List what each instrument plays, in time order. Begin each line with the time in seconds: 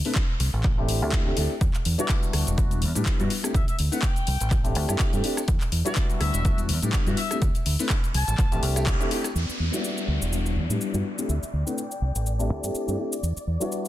0.05 grand piano A3 C4 D4 E4 B4, open hi-hat, tambourine
0.15 kick, clap
0.28 tambourine
0.40 fingered electric bass C2, open hi-hat
0.53 fingered electric bass A1, tambourine
0.64 kick, clap
0.77 grand piano A3 C4 D4 E4 G4, tambourine
0.89 open hi-hat
1.01 fingered electric bass D2, grand piano A3 C4 D4 E4 G4, tambourine
1.12 kick, clap
1.26 grand piano A3 C4 D4 E4 G4, tambourine
1.37 fingered electric bass D2, grand piano A3 C4 D4 E4 G4, open hi-hat
1.50 tambourine
1.61 fingered electric bass E2, kick, closed hi-hat, cabasa
1.74 muted fingered electric bass stroke, clap, closed hi-hat, tambourine, cabasa
1.85 fingered electric bass E2, open hi-hat
1.98 grand piano G3 B3 D4 E4 F#4, trumpet section D5, closed hi-hat, tambourine, cabasa
2.09 kick, clap, closed hi-hat, cabasa
2.23 closed hi-hat, tambourine, cabasa
2.33 fingered electric bass D2, cross-stick, open hi-hat
2.47 fingered electric bass E1, closed hi-hat, tambourine, cabasa
2.58 grand piano G3 B3 D4 E4 F#4, kick, closed hi-hat, tambourine, cabasa
2.71 closed hi-hat, tambourine, cabasa
2.82 fingered electric bass E2, open hi-hat
2.95 fingered electric bass A2, grand piano G3 B3 D4 E4 G4, closed hi-hat, tambourine, cabasa
3.06 kick, clap, closed hi-hat, cabasa
3.19 fingered electric bass G2, grand piano G3 B3 D4 E4 F#4, closed hi-hat, tambourine, cabasa
3.30 open hi-hat
3.43 grand piano A3 C4 D4 E4 G4, cross-stick, closed hi-hat, tambourine, cabasa
3.54 fingered electric bass D2, trumpet section E5, kick, closed hi-hat, tambourine, cabasa
3.68 trumpet section E5, closed hi-hat, tambourine, cabasa
3.79 fingered electric bass D2, open hi-hat
3.91 grand piano A3 C4 D4 E4 B4, trumpet section G5, open hi-hat, tambourine, cabasa
4.02 kick, clap, closed hi-hat, cabasa
4.16 closed hi-hat, tambourine, cabasa
4.27 fingered electric bass C2, open hi-hat
4.40 fingered electric bass A1, closed hi-hat, tambourine, cabasa
4.51 kick, clap, closed hi-hat, cabasa
4.64 grand piano A3 C4 D4 E4 G4, closed hi-hat, tambourine, cabasa
4.75 fingered electric bass D2, open hi-hat
4.88 fingered electric bass G2, grand piano A3 C4 D4 E4 G4, cross-stick, closed hi-hat, tambourine, cabasa
4.99 kick, clap, closed hi-hat, cabasa
5.13 fingered electric bass G2, grand piano A3 C4 D4 E4 G4, closed hi-hat, tambourine, cabasa
5.23 grand piano A3 C4 D4 E4 G4, open hi-hat
5.37 cross-stick, closed hi-hat, tambourine, cabasa
5.48 fingered electric bass E2, kick, closed hi-hat, cabasa
5.61 clap, closed hi-hat, tambourine, cabasa
5.72 fingered electric bass E2, open hi-hat
5.85 grand piano G3 B3 D4 E4 F#4, trumpet section D5, closed hi-hat, tambourine, cabasa
5.96 kick, clap, closed hi-hat, cabasa
6.10 closed hi-hat, tambourine, cabasa
6.21 fingered electric bass D2, trumpet section E5, cross-stick, open hi-hat
6.34 fingered electric bass E1, closed hi-hat, tambourine, cabasa
6.45 grand piano G3 B3 D4 E4, kick, closed hi-hat, cabasa
6.57 closed hi-hat, tambourine, cabasa
6.69 fingered electric bass E2, open hi-hat
6.82 fingered electric bass A2, grand piano G3 B3 D4 E4 G4, closed hi-hat, tambourine, cabasa
6.93 kick, clap, closed hi-hat, cabasa
7.06 fingered electric bass G2, grand piano G3 B3 D4 E4 F#4, closed hi-hat, tambourine, cabasa
7.17 trumpet section E5, open hi-hat
7.30 grand piano A3 C4 D4 E4 G4, cross-stick, closed hi-hat, tambourine, cabasa
7.42 fingered electric bass D2, kick, closed hi-hat, tambourine, cabasa
7.54 muted fingered electric bass stroke, closed hi-hat, tambourine, cabasa
7.66 fingered electric bass D2, open hi-hat
7.79 grand piano A3 C4 D4 E4 B4, open hi-hat, tambourine, cabasa
7.89 kick, clap, closed hi-hat, cabasa
8.03 closed hi-hat, tambourine, cabasa
8.14 fingered electric bass C2, trumpet section A5, open hi-hat
8.27 fingered electric bass A1, closed hi-hat, tambourine, cabasa
8.38 fingered electric bass A1, kick, clap, closed hi-hat, tambourine, cabasa
8.51 fingered electric bass A1, grand piano A3 C4 D4 E4 G4, closed hi-hat, tambourine, cabasa
8.63 fingered electric bass C2, open hi-hat
8.76 grand piano A3 C4 D4 E4 G4, cross-stick, closed hi-hat, tambourine, cabasa
8.86 kick, clap, closed hi-hat, cabasa
8.99 grand piano A3 C4 D4 E4 G4, closed hi-hat, tambourine, cabasa
9.11 grand piano A3 C4 D4 E4 G4, open hi-hat
9.24 cross-stick, closed hi-hat, tambourine, cabasa
9.35 fingered electric bass E2, string section D5, downlifter, cabasa
9.49 muted fingered electric bass stroke, cabasa
9.60 fingered electric bass E2
9.72 grand piano G3 B3 D4 E4 F#4, trumpet section D5, cabasa
9.84 cabasa
9.98 cabasa
10.08 fingered electric bass D2
10.21 fingered electric bass E1, cabasa
10.32 grand piano G3 B3 D4 E4 F#4, cabasa
10.46 cabasa
10.56 fingered electric bass E2
10.69 fingered electric bass A2, grand piano G3 B3 D4 E4 G4, cabasa
10.81 cabasa
10.93 fingered electric bass G2, grand piano G3 B3 D4 E4 F#4, cabasa
11.18 grand piano A3 C4 D4 E4 G4, cabasa
11.29 fingered electric bass D2, trumpet section E5, cabasa
11.42 trumpet section E5, muted fingered electric bass stroke, cabasa
11.53 fingered electric bass D2
11.66 grand piano A3 C4 D4 E4 B4, trumpet section G5, cabasa
11.78 cabasa
11.91 cabasa
12.02 fingered electric bass C2
12.15 fingered electric bass A1, cabasa
12.26 cabasa
12.39 grand piano A3 C4 D4 E4 G4, cabasa
12.50 fingered electric bass D2
12.63 fingered electric bass G2, grand piano A3 C4 D4 E4 G4, cabasa
12.74 muted fingered electric bass stroke, cabasa
12.87 fingered electric bass G2, grand piano A3 C4 D4 E4 G4, cabasa
12.98 grand piano A3 C4 D4 E4 G4
13.13 cabasa
13.23 fingered electric bass E2, cabasa
13.36 muted fingered electric bass stroke, cabasa
13.47 fingered electric bass E2
13.60 grand piano G3 B3 D4 E4 F#4, trumpet section D5, cabasa
13.72 cabasa